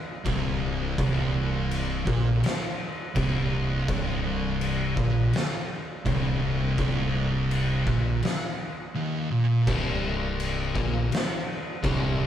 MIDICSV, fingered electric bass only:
0, 0, Header, 1, 3, 480
1, 0, Start_track
1, 0, Key_signature, -3, "minor"
1, 0, Tempo, 723764
1, 651, Time_signature, 4, 2, 24, 8
1, 8136, End_track
2, 0, Start_track
2, 0, Title_t, "Fingered electric bass"
2, 0, Program_c, 0, 33
2, 171, Note_on_c, 0, 24, 100
2, 625, Note_off_c, 0, 24, 0
2, 654, Note_on_c, 0, 24, 101
2, 1347, Note_off_c, 0, 24, 0
2, 1373, Note_on_c, 0, 34, 101
2, 1596, Note_off_c, 0, 34, 0
2, 2096, Note_on_c, 0, 24, 100
2, 2549, Note_off_c, 0, 24, 0
2, 2577, Note_on_c, 0, 24, 97
2, 3270, Note_off_c, 0, 24, 0
2, 3295, Note_on_c, 0, 34, 101
2, 3518, Note_off_c, 0, 34, 0
2, 4017, Note_on_c, 0, 24, 100
2, 4470, Note_off_c, 0, 24, 0
2, 4497, Note_on_c, 0, 24, 87
2, 5190, Note_off_c, 0, 24, 0
2, 5216, Note_on_c, 0, 34, 96
2, 5439, Note_off_c, 0, 34, 0
2, 6414, Note_on_c, 0, 24, 101
2, 7107, Note_off_c, 0, 24, 0
2, 7133, Note_on_c, 0, 34, 102
2, 7356, Note_off_c, 0, 34, 0
2, 7849, Note_on_c, 0, 24, 110
2, 8136, Note_off_c, 0, 24, 0
2, 8136, End_track
3, 0, Start_track
3, 0, Title_t, "Muted fingered electric bass strokes"
3, 5453, Note_on_c, 9, 29, 42
3, 5520, Note_off_c, 9, 29, 0
3, 7376, Note_on_c, 9, 29, 44
3, 7442, Note_off_c, 9, 29, 0
3, 8136, End_track
0, 0, End_of_file